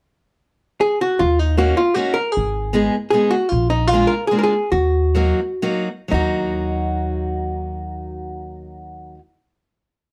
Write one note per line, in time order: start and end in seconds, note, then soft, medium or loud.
0.81 1.01 G#4 medium
1.01 1.21 F#4 medium
1.19 1.71 D#2 medium
1.19 1.39 F4 medium
1.39 1.58 D#4 medium
1.57 1.78 A#3 medium
1.57 1.78 C#4 soft
1.57 1.79 D#4 soft
1.57 1.77 F#4 medium
1.57 1.79 F#4 medium
1.77 1.94 F4 medium
1.94 2.17 A#3 medium
1.94 2.17 C#4 soft
1.94 2.17 D#4 soft
1.94 2.17 F#4 medium
1.94 2.18 F#4 medium
2.14 2.32 A#4 medium
2.32 2.93 G#4 medium
2.37 2.87 G#1 medium
2.73 2.94 G#3 medium
2.73 2.94 B3 medium
2.73 2.95 D#4 medium
2.73 2.95 G#4 medium
3.11 3.33 G#3 medium
3.11 3.34 B3 soft
3.11 3.33 D#4 soft
3.11 3.33 G#4 medium
3.11 3.34 G#4 medium
3.31 3.49 F#4 medium
3.49 4.03 A#1 medium
3.49 3.70 F4 medium
3.70 3.87 D#4 medium
3.87 4.10 F4 medium
3.92 4.12 G#3 medium
3.92 4.12 A#3 medium
3.92 4.13 D4 medium
3.92 4.13 F4 medium
4.07 4.27 A#4 medium
4.27 4.52 G#3 soft
4.27 4.36 G#4 medium
4.32 4.53 A#3 soft
4.32 4.53 D4 soft
4.32 4.53 F4 medium
4.39 4.43 A#4 medium
4.43 4.69 G#4 medium
4.72 5.31 D#2 medium
4.72 5.83 F#4 medium
5.15 5.38 F#3 medium
5.15 5.39 A#3 medium
5.15 5.39 D#4 soft
5.15 5.39 F#4 medium
5.62 5.87 F#3 medium
5.62 5.88 A#3 soft
5.62 5.87 D#4 soft
5.62 5.88 F#4 medium
6.08 9.18 D#2 medium
6.08 9.14 F#3 soft
6.08 9.16 A#3 soft
6.08 9.18 D#4 medium
6.12 9.18 D#4 soft
6.12 9.20 F#4 medium